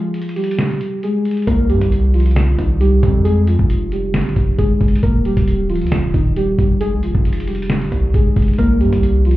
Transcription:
0.00 0.34 F3 medium
0.00 0.34 F4 medium
0.14 closed hi-hat medium
0.22 closed hi-hat medium
0.29 closed hi-hat medium
0.36 0.99 G3 medium
0.36 0.99 G4 medium
0.36 closed hi-hat medium
0.36 open hi-hat medium
0.44 closed hi-hat medium
0.51 closed hi-hat medium
0.59 snare loud
0.59 closed hi-hat medium
0.70 closed hi-hat medium
0.81 closed hi-hat medium
1.03 1.45 G#3 medium
1.03 1.45 G#4 medium
1.03 closed hi-hat medium
1.25 closed hi-hat medium
1.25 open hi-hat soft
1.31 closed hi-hat medium
1.37 closed hi-hat soft
1.42 closed hi-hat soft
1.47 1.71 C2 loud
1.47 1.64 A#3 medium
1.47 1.64 A#4 loud
1.47 kick loud
1.47 closed hi-hat medium
1.69 1.81 G2 loud
1.69 2.12 G3 medium
1.69 2.11 G4 medium
1.69 closed hi-hat soft
1.81 2.55 C2 loud
1.81 kick loud
1.81 closed hi-hat medium
1.92 closed hi-hat medium
2.14 2.56 F3 medium
2.14 2.56 F4 medium
2.14 closed hi-hat soft
2.20 closed hi-hat medium
2.26 closed hi-hat medium
2.31 closed hi-hat medium
2.36 snare loud
2.36 closed hi-hat medium
2.58 3.01 C2 loud
2.58 2.76 D#3 medium
2.58 2.75 D#4 medium
2.58 kick medium
2.58 closed hi-hat medium
2.81 2.98 G3 medium
2.81 2.97 G4 medium
2.81 closed hi-hat medium
3.02 3.57 F2 loud
3.02 3.20 G3 medium
3.02 3.19 G4 medium
3.02 kick loud
3.02 closed hi-hat medium
3.24 3.42 G#3 medium
3.24 3.41 G#4 loud
3.24 closed hi-hat medium
3.47 3.90 F3 medium
3.47 3.89 F4 medium
3.47 closed hi-hat medium
3.59 4.16 F1 loud
3.59 kick loud
3.70 closed hi-hat medium
3.92 4.55 G3 soft
3.92 4.55 G4 medium
3.92 closed hi-hat medium
4.14 4.35 G#1 loud
4.14 snare loud
4.14 closed hi-hat medium
4.21 closed hi-hat medium
4.29 closed hi-hat soft
4.36 4.58 F1 loud
4.36 kick medium
4.36 closed hi-hat medium
4.58 4.80 F1 loud
4.58 5.00 G#3 medium
4.58 5.00 G#4 medium
4.58 kick medium
4.58 closed hi-hat medium
4.81 5.02 F1 loud
4.81 kick loud
4.81 closed hi-hat soft
4.88 closed hi-hat medium
4.96 closed hi-hat medium
5.03 5.36 D#1 loud
5.03 5.20 A#3 medium
5.03 5.20 A#4 loud
5.03 kick loud
5.03 closed hi-hat medium
5.25 5.67 G3 medium
5.25 5.67 G4 medium
5.25 closed hi-hat medium
5.37 5.83 D1 loud
5.37 kick loud
5.37 closed hi-hat medium
5.48 closed hi-hat medium
5.70 6.12 F3 medium
5.70 6.11 F4 medium
5.70 closed hi-hat soft
5.76 closed hi-hat medium
5.81 5.99 D#2 loud
5.81 closed hi-hat medium
5.87 closed hi-hat medium
5.92 snare loud
5.92 closed hi-hat medium
5.98 6.13 D1 loud
6.14 6.57 D#1 loud
6.14 6.31 D#3 medium
6.14 6.31 D#4 medium
6.14 kick medium
6.14 closed hi-hat medium
6.36 6.54 G3 medium
6.36 6.53 G4 medium
6.36 closed hi-hat medium
6.58 6.94 F1 loud
6.58 6.76 G3 medium
6.58 6.76 G4 medium
6.58 kick loud
6.58 closed hi-hat medium
6.80 6.98 G#3 medium
6.80 6.97 G#4 loud
6.80 closed hi-hat medium
6.92 7.04 C2 loud
7.03 7.14 F1 loud
7.03 7.46 F3 medium
7.03 7.45 F4 medium
7.03 closed hi-hat medium
7.15 7.89 F1 loud
7.15 kick loud
7.25 closed hi-hat medium
7.33 closed hi-hat medium
7.40 closed hi-hat medium
7.47 8.10 G3 medium
7.47 8.10 G4 medium
7.47 closed hi-hat medium
7.47 open hi-hat medium
7.55 closed hi-hat medium
7.62 closed hi-hat medium
7.70 snare loud
7.70 closed hi-hat medium
7.81 closed hi-hat medium
7.92 8.13 C2 loud
7.92 kick medium
7.92 closed hi-hat medium
8.14 8.35 F1 loud
8.14 8.57 G#3 medium
8.14 8.56 G#4 medium
8.14 kick medium
8.14 closed hi-hat medium
8.36 8.58 F1 loud
8.36 kick loud
8.36 closed hi-hat medium
8.36 open hi-hat soft
8.42 closed hi-hat medium
8.48 closed hi-hat soft
8.53 closed hi-hat soft
8.58 8.82 C2 loud
8.58 8.75 A#3 medium
8.58 8.75 A#4 loud
8.58 kick loud
8.58 closed hi-hat medium
8.80 8.92 G2 medium
8.80 9.23 G3 medium
8.80 9.22 G4 medium
8.80 closed hi-hat soft
8.93 9.37 C2 loud
8.93 kick medium
8.93 closed hi-hat medium
9.03 closed hi-hat medium
9.25 9.37 F3 medium
9.25 9.37 F4 medium
9.25 closed hi-hat soft
9.31 closed hi-hat medium

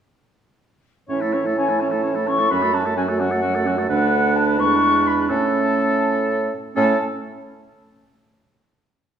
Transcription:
1.09 2.46 A2 soft
1.09 1.23 E3 soft
1.09 1.23 C#4 soft
1.09 1.23 C#5 soft
1.09 1.54 E5 medium
1.21 1.35 A3 soft
1.21 1.35 E4 soft
1.21 1.35 A4 soft
1.33 1.46 E3 soft
1.33 1.47 C#4 soft
1.33 1.48 C#5 soft
1.44 1.55 A3 soft
1.44 1.57 E4 soft
1.44 1.58 A4 soft
1.56 1.70 E3 soft
1.56 1.71 C#4 soft
1.56 1.71 C#5 soft
1.56 1.81 G#5 medium
1.69 1.81 A3 soft
1.69 1.83 E4 soft
1.69 1.81 A4 soft
1.80 1.93 E3 soft
1.80 1.95 C#4 soft
1.80 1.93 C#5 soft
1.80 2.29 A5 medium
1.91 2.03 A3 soft
1.91 2.04 E4 soft
1.91 2.02 A4 soft
2.03 2.17 E3 soft
2.03 2.18 C#4 soft
2.03 2.17 C#5 soft
2.15 2.28 A3 soft
2.15 2.30 E4 soft
2.15 2.29 A4 soft
2.26 2.39 E3 soft
2.26 2.42 C#4 soft
2.26 2.40 C#5 soft
2.26 2.52 C#6 medium
2.38 2.49 A3 soft
2.38 2.51 E4 soft
2.38 2.50 A4 soft
2.49 3.86 F#2 medium
2.49 2.63 F#3 soft
2.49 2.65 C#4 soft
2.49 2.64 F#4 medium
2.49 2.75 B5 medium
2.61 2.75 A3 soft
2.61 2.75 F#4 soft
2.61 2.76 A4 soft
2.73 2.86 F#3 soft
2.73 2.86 C#4 soft
2.73 2.87 F#4 soft
2.73 2.96 A5 medium
2.84 2.96 A3 soft
2.84 2.96 F#4 soft
2.84 2.96 A4 soft
2.96 3.10 F#3 soft
2.96 3.10 C#4 soft
2.96 3.10 F#4 soft
2.96 3.02 G#5 medium
3.08 3.21 A3 soft
3.08 3.21 F#4 soft
3.08 3.22 A4 soft
3.19 3.33 F#3 soft
3.19 3.32 C#4 soft
3.19 3.33 F#4 soft
3.19 3.87 F#5 medium
3.31 3.42 A3 soft
3.31 3.42 F#4 soft
3.31 3.42 A4 soft
3.42 3.56 F#3 soft
3.42 3.56 C#4 soft
3.42 3.56 F#4 soft
3.54 3.68 A3 soft
3.54 3.67 F#4 soft
3.54 3.68 A4 soft
3.66 3.79 F#3 soft
3.66 3.79 C#4 soft
3.66 3.80 F#4 soft
3.77 3.88 A3 soft
3.77 3.88 F#4 soft
3.77 3.89 A4 soft
3.89 4.60 D2 medium
3.89 4.60 A3 medium
3.89 4.55 D4 medium
3.89 4.55 B4 medium
3.89 4.37 F#5 medium
4.36 4.61 A5 medium
4.58 5.29 E2 medium
4.58 5.28 G#3 medium
4.58 5.31 D4 medium
4.58 5.31 B4 medium
4.58 5.08 C#6 medium
5.07 5.29 B5 medium
5.29 6.49 A2 medium
5.29 6.49 A3 soft
5.29 6.51 C#4 soft
5.29 6.52 A4 medium
5.29 6.49 A5 medium
6.76 6.97 A2 medium
6.76 6.96 A3 medium
6.76 6.96 C#4 medium
6.76 6.96 A4 medium
6.76 7.03 A5 medium

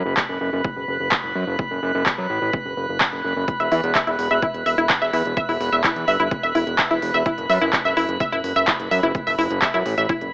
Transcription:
0.00 10.33 B4 medium
0.00 10.33 B5 medium
0.06 0.14 F#1 medium
0.17 kick loud
0.17 clap loud
0.29 0.38 F#1 medium
0.41 0.50 F#1 loud
0.53 0.62 F#1 medium
0.65 kick loud
0.76 0.85 F#1 medium
0.88 0.97 F#1 loud
1.00 1.09 F#1 medium
1.12 kick loud
1.12 clap loud
1.24 1.33 F#1 medium
1.35 1.44 F#2 loud
1.47 1.56 F#1 medium
1.59 kick loud
1.71 1.80 F#1 medium
1.83 1.92 F#1 medium
1.95 2.03 F#1 medium
2.06 kick medium
2.06 clap loud
2.18 2.27 F#2 medium
2.30 2.39 A1 medium
2.42 2.51 A1 medium
2.53 kick loud
2.65 2.74 F#1 medium
2.77 2.86 F#1 loud
2.89 2.98 F#1 medium
3.01 kick loud
3.01 clap loud
3.13 3.22 F#1 medium
3.24 3.33 F#1 loud
3.36 3.45 F#1 medium
3.48 kick loud
3.48 closed hi-hat medium
3.60 3.69 E1 medium
3.60 3.63 E5 medium
3.60 closed hi-hat soft
3.72 3.81 E2 medium
3.72 3.75 E4 medium
3.72 open hi-hat medium
3.84 3.92 E1 medium
3.84 closed hi-hat soft
3.95 3.98 E5 medium
3.95 kick medium
3.95 clap loud
3.95 closed hi-hat medium
4.07 4.16 E1 medium
4.07 4.10 E4 medium
4.07 closed hi-hat soft
4.19 4.28 E1 medium
4.19 open hi-hat loud
4.31 4.40 E1 medium
4.31 4.34 E5 medium
4.31 closed hi-hat soft
4.42 4.46 E4 medium
4.42 kick loud
4.42 closed hi-hat medium
4.54 4.63 E1 medium
4.54 closed hi-hat soft
4.66 4.75 E1 loud
4.66 4.69 E5 medium
4.66 open hi-hat loud
4.78 4.87 E1 medium
4.78 4.81 E4 medium
4.78 closed hi-hat soft
4.90 kick loud
4.90 clap loud
4.90 closed hi-hat medium
5.02 5.11 E1 medium
5.02 5.05 E5 medium
5.02 closed hi-hat soft
5.13 5.22 E2 loud
5.13 5.17 E4 medium
5.13 open hi-hat loud
5.25 5.34 E1 medium
5.25 closed hi-hat soft
5.37 5.40 E5 medium
5.37 kick loud
5.37 closed hi-hat medium
5.49 5.58 E1 medium
5.49 5.52 E4 medium
5.49 open hi-hat medium
5.61 5.70 E1 medium
5.61 open hi-hat medium
5.72 5.81 E1 medium
5.72 5.76 E5 medium
5.72 closed hi-hat soft
5.84 5.87 E4 medium
5.84 kick medium
5.84 clap loud
5.84 closed hi-hat medium
5.96 6.05 E2 medium
5.96 closed hi-hat soft
6.08 6.17 G1 loud
6.08 6.11 E5 medium
6.08 open hi-hat medium
6.20 6.29 G1 medium
6.20 6.23 E4 medium
6.20 closed hi-hat soft
6.31 kick loud
6.31 closed hi-hat medium
6.43 6.52 E1 medium
6.43 6.47 E5 medium
6.43 closed hi-hat soft
6.55 6.64 E1 loud
6.55 6.58 E4 medium
6.55 open hi-hat loud
6.67 6.76 E1 medium
6.67 closed hi-hat soft
6.79 6.82 E5 medium
6.79 kick medium
6.79 clap loud
6.79 closed hi-hat medium
6.91 6.99 E1 medium
6.91 6.94 E4 medium
6.91 closed hi-hat soft
7.02 7.11 E1 loud
7.02 open hi-hat medium
7.14 7.23 E1 medium
7.14 7.17 E5 medium
7.14 closed hi-hat soft
7.26 7.29 E4 medium
7.26 kick loud
7.26 closed hi-hat medium
7.38 7.47 F#1 medium
7.38 closed hi-hat soft
7.49 7.59 F#2 medium
7.49 7.53 E5 medium
7.49 open hi-hat medium
7.61 7.70 F#1 medium
7.61 7.65 E4 medium
7.61 closed hi-hat soft
7.73 kick medium
7.73 clap loud
7.73 closed hi-hat medium
7.85 7.94 F#1 medium
7.85 7.88 E5 medium
7.85 closed hi-hat soft
7.97 8.06 F#1 loud
7.97 8.00 E4 medium
7.97 open hi-hat medium
8.09 8.18 F#1 medium
8.09 closed hi-hat soft
8.20 8.24 E5 medium
8.20 kick loud
8.20 closed hi-hat medium
8.32 8.41 F#1 medium
8.32 8.36 E4 medium
8.32 closed hi-hat soft
8.44 8.53 F#1 medium
8.44 open hi-hat loud
8.56 8.65 F#1 medium
8.56 8.59 E5 medium
8.56 closed hi-hat soft
8.67 8.71 E4 medium
8.67 kick loud
8.67 clap loud
8.67 closed hi-hat medium
8.80 8.88 F#1 medium
8.80 closed hi-hat soft
8.91 9.00 F#2 loud
8.91 8.95 E5 medium
8.91 open hi-hat loud
9.03 9.12 F#1 loud
9.03 9.06 E4 medium
9.03 closed hi-hat soft
9.15 kick loud
9.15 closed hi-hat medium
9.27 9.36 F#1 medium
9.27 9.30 E5 medium
9.27 open hi-hat medium
9.38 9.48 F#1 medium
9.38 9.42 E4 medium
9.38 open hi-hat medium
9.50 9.59 F#1 medium
9.50 closed hi-hat soft
9.62 9.65 E5 medium
9.62 kick medium
9.62 clap loud
9.62 closed hi-hat medium
9.74 9.83 F#2 medium
9.74 9.77 E4 medium
9.74 closed hi-hat soft
9.86 9.95 A1 loud
9.86 open hi-hat medium
9.98 10.07 A1 medium
9.98 10.01 E5 medium
9.98 closed hi-hat soft
10.09 10.13 E4 medium
10.09 kick loud
10.09 closed hi-hat medium
10.21 10.30 F#1 medium
10.21 closed hi-hat soft

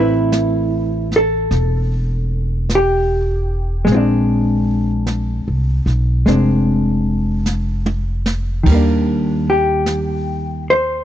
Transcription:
0.00 1.46 A1 medium
0.00 3.84 A3 medium
0.00 3.88 C4 medium
0.00 1.09 E4 medium
0.00 3.89 B4 medium
0.32 brush sweep soft
0.32 snare soft
0.32 hi-hat pedal medium
1.12 snare soft
1.16 2.68 A4 medium
1.51 3.84 E1 medium
1.51 brush sweep soft
1.51 snare soft
2.70 brush sweep soft
2.70 snare soft
2.70 hi-hat pedal soft
2.75 3.87 G4 medium
3.85 5.42 A#1 medium
3.85 6.25 G#3 medium
3.85 brush sweep soft
3.85 snare soft
3.92 6.27 C4 medium
3.92 3.96 F4 medium
3.97 6.27 D4 medium
5.07 brush sweep soft
5.07 snare soft
5.07 hi-hat pedal medium
5.48 5.84 C2 medium
5.86 6.23 B1 medium
5.86 snare soft
6.26 8.62 F1 medium
6.26 8.66 G#3 soft
6.26 8.67 C4 soft
6.26 8.67 D4 soft
6.26 brush sweep soft
6.26 snare soft
7.46 snare soft
7.46 hi-hat pedal soft
7.86 high tom medium
8.26 snare medium
8.63 11.01 D#2 medium
8.63 11.04 D#3 soft
8.63 11.03 G3 soft
8.63 brush sweep soft
8.63 kick medium
8.63 crash medium
8.71 11.04 A#3 soft
8.71 11.04 D4 soft
9.50 10.63 G4 medium
9.86 brush sweep soft
9.86 snare soft
9.86 hi-hat pedal medium
10.70 11.04 C5 medium

